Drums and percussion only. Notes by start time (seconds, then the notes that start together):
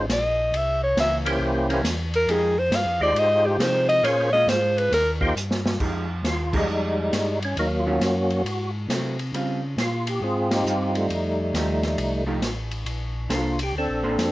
0.09 snare, hi-hat pedal, ride
0.54 ride
0.97 snare, hi-hat pedal, ride
1.26 ride
1.70 ride
1.85 snare, hi-hat pedal, ride
2.14 ride
2.29 ride
2.72 snare, hi-hat pedal, ride
3.16 ride
3.60 snare, hi-hat pedal, ride
3.89 ride
4.04 ride
4.48 snare, hi-hat pedal, ride
4.78 ride
4.92 snare, ride
5.21 kick
5.37 hi-hat pedal
5.51 snare
5.66 snare
5.80 kick, crash
6.25 snare, hi-hat pedal, ride
6.53 kick, crash
7.13 snare, hi-hat pedal, ride
7.42 ride
7.57 ride
8.01 snare, hi-hat pedal, ride
8.30 ride
8.46 ride
8.90 snare, hi-hat pedal, ride
9.19 ride
9.34 ride
9.78 snare, hi-hat pedal, ride
10.07 ride
10.51 snare, ride
10.66 hi-hat pedal
10.95 ride
11.10 ride
11.54 snare, hi-hat pedal, ride
11.83 snare, ride
11.98 ride
12.42 snare, hi-hat pedal, ride
12.71 ride
12.86 ride
13.30 snare, hi-hat pedal, ride
13.59 ride
14.19 snare, hi-hat pedal, ride